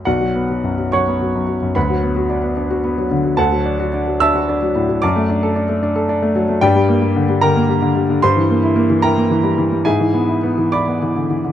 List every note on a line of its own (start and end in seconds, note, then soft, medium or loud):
0.05 1.72 B1 medium
0.05 0.89 F#4 medium
0.05 0.89 D5 soft
0.05 0.92 F#5 medium
0.21 0.44 F#3 soft
0.36 0.58 B3 soft
0.50 0.73 F#3 medium
0.64 0.87 F#2 soft
0.78 1.01 F#3 soft
0.92 1.15 F#2 soft
0.92 1.72 C#5 medium
0.92 1.72 F#5 medium
0.92 1.75 C#6 medium
1.08 1.30 B3 medium
1.21 1.43 F#3 medium
1.35 1.57 F#2 soft
1.49 1.70 F#3 soft
1.62 1.76 F#2 medium
1.75 3.34 D2 medium
1.75 3.07 B4 soft
1.75 3.07 F#5 medium
1.75 3.11 B5 medium
1.90 2.11 F#3 medium
2.03 2.25 B3 soft
2.16 2.38 F#4 medium
2.30 2.52 D4 medium
2.43 2.65 B3 soft
2.57 2.79 D4 medium
2.71 2.92 F#4 medium
2.84 3.06 B3 medium
2.98 3.19 F#3 medium
3.11 3.32 D3 medium
3.25 3.38 F#3 medium
3.37 4.99 D2 medium
3.37 4.18 A4 medium
3.37 4.18 F#5 medium
3.37 4.20 A5 medium
3.52 3.74 F#3 medium
3.65 3.88 D4 medium
3.80 4.02 F#4 medium
3.94 4.16 D4 medium
4.08 4.30 F#3 medium
4.20 4.43 D4 medium
4.20 4.99 E5 medium
4.20 4.99 A5 medium
4.20 5.02 E6 loud
4.35 4.57 F#4 medium
4.49 4.70 D4 medium
4.62 4.84 F#3 medium
4.76 4.97 A2 medium
4.89 5.03 F#3 medium
5.02 6.58 F#2 medium
5.02 6.32 D5 medium
5.02 6.32 A5 medium
5.02 6.35 D6 medium
5.16 5.37 A3 medium
5.30 5.51 D4 medium
5.43 5.64 A4 medium
5.56 5.77 D4 medium
5.69 5.91 A3 medium
5.83 6.04 D4 medium
5.96 6.17 A4 medium
6.09 6.30 D4 medium
6.22 6.43 A3 medium
6.36 6.57 F#3 medium
6.49 6.62 A3 medium
6.61 8.18 G2 medium
6.61 7.38 G4 medium
6.61 7.38 D5 medium
6.61 7.41 G5 loud
6.76 6.97 G3 medium
6.89 7.10 A#3 medium
7.02 7.23 G3 medium
7.16 7.37 D3 medium
7.29 7.50 G3 medium
7.41 7.63 D3 medium
7.41 8.19 A#4 medium
7.41 8.18 G5 medium
7.41 8.22 A#5 medium
7.56 7.77 A#3 medium
7.69 7.90 G3 medium
7.82 8.03 D3 medium
7.96 8.17 G3 medium
8.10 8.23 D3 medium
8.22 9.82 G2 medium
8.22 9.00 C5 medium
8.22 9.03 C6 loud
8.37 8.58 E3 medium
8.50 8.71 A#3 medium
8.63 8.84 E4 medium
8.76 8.97 A#3 medium
8.90 9.11 E3 medium
9.02 9.25 E4 medium
9.02 9.82 A#4 medium
9.02 9.82 G5 medium
9.02 9.85 A#5 medium
9.17 9.39 A#3 medium
9.30 9.52 E3 medium
9.43 9.66 G3 medium
9.58 9.80 E3 medium
9.72 9.86 G3 medium
9.85 11.52 G#2 medium
9.85 10.69 G#4 medium
9.85 10.69 E5 medium
9.85 10.73 G#5 medium
10.00 10.23 E3 medium
10.14 10.37 B3 medium
10.29 10.52 E4 medium
10.43 10.67 B3 medium
10.58 10.81 E3 medium
10.72 10.96 E4 soft
10.72 11.52 D5 medium
10.72 11.52 B5 medium
10.72 11.52 D6 medium
10.88 11.11 B3 medium
11.02 11.25 E3 medium
11.16 11.39 D3 soft
11.30 11.52 E3 soft
11.45 11.52 D3 soft